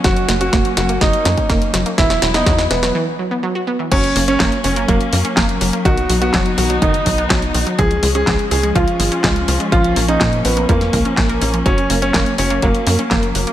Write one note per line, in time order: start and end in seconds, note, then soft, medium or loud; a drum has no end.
0.00 2.91 F#3 medium
0.00 1.94 C#4 medium
0.04 0.26 F#1 loud
0.04 0.14 F#3 loud
0.04 1.96 A#3 medium
0.04 0.32 F#4 loud
0.04 kick loud
0.04 snare medium
0.04 closed hi-hat medium
0.17 closed hi-hat soft
0.28 0.50 F#1 loud
0.28 0.40 A#3 medium
0.28 snare medium
0.28 closed hi-hat medium
0.41 0.47 C#4 medium
0.41 0.69 F#4 medium
0.41 closed hi-hat soft
0.53 0.63 F#1 loud
0.53 0.63 A#3 loud
0.53 kick loud
0.53 snare medium
0.53 closed hi-hat medium
0.65 closed hi-hat soft
0.77 0.98 F#1 medium
0.77 0.87 F#3 medium
0.77 0.96 F#4 medium
0.77 snare medium
0.77 closed hi-hat medium
0.89 1.01 A#3 medium
0.89 closed hi-hat soft
1.01 1.12 F#1 medium
1.01 1.11 F#3 loud
1.01 1.88 D#4 medium
1.01 kick loud
1.01 snare medium
1.01 closed hi-hat medium
1.13 closed hi-hat soft
1.25 1.36 F#2 loud
1.25 1.37 A#3 medium
1.25 snare medium
1.25 closed hi-hat medium
1.37 1.43 C#4 medium
1.37 kick medium
1.37 closed hi-hat soft
1.49 1.71 F#1 medium
1.49 1.59 A#3 loud
1.49 kick loud
1.49 snare medium
1.49 closed hi-hat medium
1.62 closed hi-hat soft
1.74 1.84 F#1 medium
1.74 1.84 F#3 medium
1.74 snare medium
1.74 closed hi-hat medium
1.86 1.97 A#3 medium
1.86 closed hi-hat soft
1.98 2.19 E1 loud
1.98 2.08 E3 loud
1.98 2.94 B3 medium
1.98 2.26 E4 loud
1.98 2.94 E4 medium
1.98 kick loud
1.98 snare medium
1.98 closed hi-hat medium
2.10 snare medium
2.10 closed hi-hat soft
2.22 2.44 E1 medium
2.22 2.34 F#3 medium
2.22 snare medium
2.22 closed hi-hat medium
2.34 2.40 B3 medium
2.34 2.62 D#4 loud
2.34 snare medium
2.34 closed hi-hat soft
2.46 2.68 E2 loud
2.46 2.56 F#3 loud
2.46 kick loud
2.46 snare medium
2.46 closed hi-hat medium
2.58 snare medium
2.58 closed hi-hat soft
2.71 2.92 E1 medium
2.71 2.80 E3 medium
2.71 2.89 B3 medium
2.71 snare loud
2.71 closed hi-hat medium
2.83 2.94 F#3 medium
2.83 snare medium
2.83 closed hi-hat soft
2.95 3.05 E3 loud
3.19 3.30 F#3 medium
3.31 3.41 B3 medium
3.43 3.53 F#3 medium
3.55 3.61 F#4 medium
3.67 3.77 B3 medium
3.79 3.85 E3 medium
3.91 4.13 F#1 loud
3.91 4.01 F#3 loud
3.91 7.75 F#3 medium
3.91 5.83 A#3 medium
3.91 4.19 C#4 loud
3.91 5.83 C#4 medium
3.91 kick loud
3.91 closed hi-hat medium
3.91 crash loud
4.04 closed hi-hat soft
4.16 4.37 F#1 loud
4.16 4.27 A#3 medium
4.16 open hi-hat loud
4.28 4.34 C#4 medium
4.28 4.56 C#4 loud
4.28 closed hi-hat soft
4.40 4.51 F#1 loud
4.40 4.50 A#3 loud
4.40 kick loud
4.40 snare loud
4.40 clap medium
4.40 closed hi-hat medium
4.52 closed hi-hat soft
4.64 4.86 F#1 medium
4.64 4.74 F#3 medium
4.64 4.83 C#4 medium
4.64 open hi-hat medium
4.76 4.88 A#3 medium
4.76 closed hi-hat soft
4.88 4.99 F#1 loud
4.88 4.98 F#3 loud
4.88 5.76 A#3 medium
4.88 kick loud
4.88 closed hi-hat medium
5.01 closed hi-hat soft
5.13 5.23 F#2 medium
5.13 5.24 A#3 medium
5.13 open hi-hat loud
5.25 5.31 C#4 medium
5.25 closed hi-hat soft
5.37 5.58 F#1 medium
5.37 5.47 A#3 loud
5.37 kick loud
5.37 snare loud
5.37 clap medium
5.37 closed hi-hat medium
5.49 closed hi-hat soft
5.61 5.72 F#1 medium
5.61 5.71 F#3 medium
5.61 open hi-hat medium
5.73 5.85 A#3 medium
5.73 closed hi-hat soft
5.85 6.06 B1 loud
5.85 5.95 D#3 loud
5.85 7.77 B3 medium
5.85 7.77 D#4 medium
5.85 6.13 F#4 loud
5.85 kick loud
5.85 closed hi-hat medium
5.97 closed hi-hat soft
6.09 6.31 B1 loud
6.09 6.21 F#3 medium
6.09 open hi-hat loud
6.21 6.27 B3 medium
6.21 6.49 F#4 loud
6.21 closed hi-hat soft
6.34 6.55 F#1 loud
6.34 6.43 F#3 loud
6.34 kick loud
6.34 snare loud
6.34 clap medium
6.34 closed hi-hat medium
6.46 closed hi-hat soft
6.58 6.79 B1 loud
6.58 6.68 D#3 medium
6.58 6.76 F#4 medium
6.58 open hi-hat medium
6.70 6.81 F#3 medium
6.70 closed hi-hat soft
6.82 7.03 F#1 loud
6.82 6.92 D#3 loud
6.82 7.69 D#4 medium
6.82 kick loud
6.82 closed hi-hat medium
6.94 closed hi-hat soft
7.06 7.27 B1 medium
7.06 7.17 F#3 medium
7.06 kick medium
7.06 open hi-hat loud
7.18 7.24 B3 medium
7.18 closed hi-hat soft
7.30 7.52 B1 medium
7.30 7.40 F#3 loud
7.30 kick loud
7.30 snare loud
7.30 clap medium
7.30 closed hi-hat medium
7.42 closed hi-hat soft
7.54 7.65 B1 medium
7.54 7.64 D#3 medium
7.54 open hi-hat medium
7.66 7.78 F#3 medium
7.66 closed hi-hat soft
7.78 8.00 C#2 loud
7.78 7.88 F3 loud
7.78 11.62 F3 medium
7.78 9.70 G#3 medium
7.78 13.53 C#4 medium
7.78 8.07 G#4 loud
7.78 kick loud
7.78 closed hi-hat medium
7.91 closed hi-hat soft
8.03 8.24 C#2 loud
8.03 8.14 G#3 medium
8.03 open hi-hat loud
8.15 8.21 C#4 medium
8.15 8.43 G#4 loud
8.15 closed hi-hat soft
8.27 8.38 C#2 loud
8.27 8.37 G#3 loud
8.27 kick loud
8.27 snare loud
8.27 clap medium
8.27 closed hi-hat medium
8.39 closed hi-hat soft
8.51 8.72 C#2 loud
8.51 8.61 F3 medium
8.51 8.70 G#4 medium
8.51 open hi-hat medium
8.63 8.75 G#3 medium
8.63 closed hi-hat soft
8.75 8.86 C#2 loud
8.75 8.85 F3 loud
8.75 9.63 F4 loud
8.75 kick loud
8.75 closed hi-hat medium
8.88 closed hi-hat soft
8.99 9.10 G#1 loud
8.99 9.11 G#3 medium
8.99 open hi-hat loud
9.12 9.18 C#4 medium
9.12 closed hi-hat soft
9.24 9.45 C#2 medium
9.24 9.34 G#3 loud
9.24 kick loud
9.24 snare loud
9.24 clap medium
9.24 closed hi-hat medium
9.36 closed hi-hat soft
9.48 9.59 C#2 medium
9.48 9.58 F3 medium
9.48 open hi-hat medium
9.60 9.72 G#3 medium
9.60 closed hi-hat soft
9.72 9.93 A#1 medium
9.72 9.82 F3 loud
9.72 11.64 A#3 medium
9.72 10.00 F4 loud
9.72 kick loud
9.72 closed hi-hat medium
9.84 closed hi-hat soft
9.96 10.18 A#1 medium
9.96 10.08 A#3 medium
9.96 open hi-hat loud
10.08 10.14 C#4 medium
10.08 10.36 D#4 loud
10.08 closed hi-hat soft
10.20 10.42 A#2 loud
10.20 10.30 A#3 loud
10.20 kick loud
10.20 snare loud
10.20 clap medium
10.20 closed hi-hat medium
10.33 closed hi-hat soft
10.45 10.66 A#1 loud
10.45 10.55 F3 medium
10.45 10.63 B3 medium
10.45 open hi-hat medium
10.57 10.68 A#3 medium
10.57 closed hi-hat soft
10.69 10.90 F2 loud
10.69 10.79 F3 loud
10.69 11.56 A#3 medium
10.69 kick loud
10.69 closed hi-hat medium
10.81 snare soft
10.81 closed hi-hat soft
10.93 11.04 C#2 loud
10.93 11.05 A#3 medium
10.93 kick medium
10.93 open hi-hat loud
11.05 11.15 C#4 medium
11.05 closed hi-hat soft
11.17 11.39 A#1 medium
11.17 11.27 A#3 medium
11.17 kick loud
11.17 snare loud
11.17 clap medium
11.17 closed hi-hat medium
11.29 11.35 A#4 medium
11.29 closed hi-hat soft
11.41 11.63 A#1 medium
11.41 11.51 C#4 medium
11.41 open hi-hat medium
11.54 11.60 F3 medium
11.54 closed hi-hat soft
11.66 11.87 F#1 loud
11.66 11.76 F#3 loud
11.66 13.53 F#3 medium
11.66 13.53 A#3 medium
11.66 11.94 C#4 loud
11.66 kick loud
11.66 closed hi-hat medium
11.78 closed hi-hat soft
11.90 12.11 F#1 loud
11.90 12.01 A#3 medium
11.90 open hi-hat loud
12.02 12.08 C#4 medium
12.02 12.30 C#4 loud
12.02 closed hi-hat soft
12.14 12.25 F#1 loud
12.14 12.24 A#3 loud
12.14 kick loud
12.14 snare loud
12.14 clap medium
12.14 closed hi-hat medium
12.26 closed hi-hat soft
12.38 12.60 F#1 loud
12.38 12.48 F#3 medium
12.38 12.57 C#4 medium
12.38 open hi-hat loud
12.50 12.62 A#3 medium
12.50 closed hi-hat soft
12.62 12.73 F#1 loud
12.62 12.72 F#3 loud
12.62 13.50 A#3 loud
12.62 kick loud
12.62 closed hi-hat medium
12.75 closed hi-hat soft
12.87 12.97 F#2 loud
12.87 12.98 A#3 medium
12.87 open hi-hat loud
12.99 13.05 C#4 medium
12.99 closed hi-hat soft
13.11 13.32 F#1 medium
13.11 13.21 A#3 loud
13.11 kick loud
13.11 snare loud
13.11 clap medium
13.11 closed hi-hat medium
13.23 closed hi-hat soft
13.35 13.46 F#1 medium
13.35 13.45 F#3 medium
13.35 open hi-hat medium
13.47 13.53 A#3 medium
13.47 closed hi-hat soft